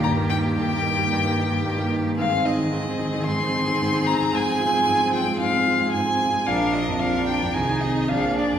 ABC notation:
X:1
M:4/4
L:1/16
Q:1/4=112
K:Eb
V:1 name="Violin"
b2 g2 g8- g2 z2 | f2 e6 c'6 b2 | a6 g2 f4 a4 | f2 e2 f2 g2 a2 e2 f2 d2 |]
V:2 name="Violin"
G16 | A16- | A16 | B4 B4 A4 A4 |]
V:3 name="Viola"
B,16 | C16- | C16 | D4 D4 E4 D4 |]
V:4 name="Grand piano"
G,, B, E G, G,, B, E G, G,, B, E G, G,, B, E G, | A,, C E E, A,, C E E, A,, C E E, A,, C E E, | A,, C F A, A,, C F A, A,, C F A, A,, C F A, | B,,, D F F,, B,,, D F F,, C,, E C, E B,,, B, D F,, |]
V:5 name="Cello" clef=bass
E,16 | E,16 | F,16 | F,4 F,4 E,4 B,,4 |]